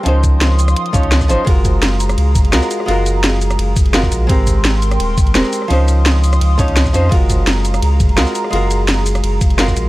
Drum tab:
RD |----------------|x-x-x-x-x-x-x-x-|x-x-x-x-x-x-x-x-|x-x-x-x-x-x-x-x-|
HH |x-x-x-oxxxxxx-x-|x-x-x-xxx-xxx-x-|x-x-x-oxx-xxx-x-|x-x-x-xxx-xxx-x-|
SH |--x---xx--x--xx-|--x---xx--x--xx-|--x---xx--x--xx-|--x---xx--x--xx-|
SD |----o--r----or--|----o--r----or-r|----o--r----or--|----o--r----or-r|
BD |--o-------o--o--|o-o-------o-----|----------o--o--|o-o-------o-----|

RD |x-x-x-x-x-x-x-x-|x-x-x-x-x-x-x-x-|x-x-x-x-x-x-x-x-|
HH |x-x-x-oxx-xxx-x-|x-x-x-xxx-xxx-x-|x-x-x-oxx-xxx-x-|
SH |--x---xx--x--xx-|--x---xx--x--xx-|--x---xx--x--xx-|
SD |----o--r----or--|----o--r----or-r|----o--r----or--|
BD |----------o--o--|o-o-------o-----|----------o--o--|